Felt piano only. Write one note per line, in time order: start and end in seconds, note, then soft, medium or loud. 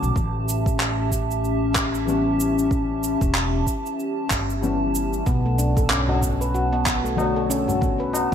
0.00 0.14 D3 medium
0.00 0.14 F#3 medium
0.00 0.14 A3 medium
0.00 0.15 C#4 medium
2.05 4.58 E3 medium
2.05 4.59 G3 medium
2.05 4.60 B3 medium
2.09 4.60 C#4 medium
4.62 5.24 E3 medium
4.62 5.24 G3 medium
4.62 5.25 B3 medium
4.62 5.25 C#4 medium
7.16 8.35 D3 medium
7.16 8.35 F#3 medium
7.16 8.35 A3 medium
7.16 8.35 C#5 medium